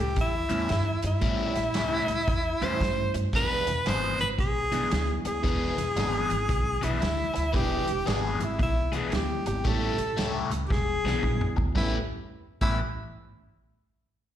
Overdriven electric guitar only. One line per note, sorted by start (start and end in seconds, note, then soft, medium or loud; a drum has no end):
0.17 muted overdriven electric guitar stroke soft
0.49 0.68 A2 medium
0.49 0.69 G3 medium
0.49 0.69 C#4 loud
0.49 0.69 E4 medium
0.69 muted overdriven electric guitar stroke soft
1.04 muted overdriven electric guitar stroke soft
1.21 1.55 A2 medium
1.21 1.55 G3 medium
1.21 1.54 C#4 medium
1.21 1.54 E4 medium
1.55 muted overdriven electric guitar stroke soft
1.75 2.08 A2 medium
1.75 2.08 G3 medium
1.75 2.08 C#4 medium
1.75 2.07 E4 medium
2.08 muted overdriven electric guitar stroke soft
2.27 muted overdriven electric guitar stroke soft
2.62 2.80 A2 medium
2.62 2.81 G3 medium
2.62 2.81 C#4 medium
2.62 2.81 E4 medium
2.82 muted overdriven electric guitar stroke soft
3.14 muted overdriven electric guitar stroke soft
3.34 3.67 E3 medium
3.34 3.67 B3 medium
3.34 3.67 D4 medium
3.34 3.67 G#4 medium
3.68 muted overdriven electric guitar stroke soft
3.86 4.19 E3 medium
3.86 4.20 B3 medium
3.86 4.20 D4 medium
3.86 4.20 G#4 medium
4.21 muted overdriven electric guitar stroke medium
4.38 muted overdriven electric guitar stroke soft
4.72 4.90 E3 medium
4.72 4.90 B3 medium
4.72 4.90 D4 medium
4.72 4.90 G#4 medium
4.91 muted overdriven electric guitar stroke soft
5.25 muted overdriven electric guitar stroke soft
5.43 5.77 E3 medium
5.43 5.77 B3 medium
5.43 5.76 D4 medium
5.43 5.76 G#4 medium
5.77 muted overdriven electric guitar stroke soft
5.96 6.30 E3 medium
5.96 6.30 B3 medium
5.96 6.30 D4 medium
5.96 6.30 G#4 medium
6.31 muted overdriven electric guitar stroke medium
6.49 muted overdriven electric guitar stroke soft
6.82 7.00 E3 medium
6.82 7.00 B3 medium
6.82 7.00 D4 medium
6.82 7.00 G#4 medium
7.01 muted overdriven electric guitar stroke soft
7.34 muted overdriven electric guitar stroke medium
7.53 7.87 E3 medium
7.53 7.86 B3 medium
7.53 7.86 D4 medium
7.53 7.86 G#4 loud
7.87 muted overdriven electric guitar stroke soft
8.06 8.40 E3 medium
8.06 8.40 B3 medium
8.06 8.40 D4 medium
8.06 8.39 G#4 medium
8.40 muted overdriven electric guitar stroke medium
8.59 muted overdriven electric guitar stroke soft
8.92 9.11 E3 medium
8.92 9.11 B3 medium
8.92 9.11 D4 medium
8.92 9.12 G#4 medium
9.12 muted overdriven electric guitar stroke soft
9.47 muted overdriven electric guitar stroke soft
9.64 9.98 A3 medium
9.64 9.97 E4 medium
9.64 9.97 G4 medium
9.64 9.97 C#5 medium
9.98 muted overdriven electric guitar stroke soft
10.17 10.51 A3 medium
10.17 10.51 E4 medium
10.17 10.50 G4 medium
10.17 10.50 C#5 loud
10.51 muted overdriven electric guitar stroke soft
10.70 muted overdriven electric guitar stroke soft
11.05 11.22 E3 medium
11.05 11.23 B3 medium
11.05 11.23 D4 medium
11.05 11.23 G#4 medium
11.24 muted overdriven electric guitar stroke soft
11.57 muted overdriven electric guitar stroke soft
11.75 11.95 A3 medium
11.75 11.96 C#4 medium
11.75 11.96 G4 medium
11.75 11.96 B4 medium
12.62 12.77 A3 medium
12.62 12.77 C#4 medium
12.62 12.77 G4 loud
12.62 12.78 B4 loud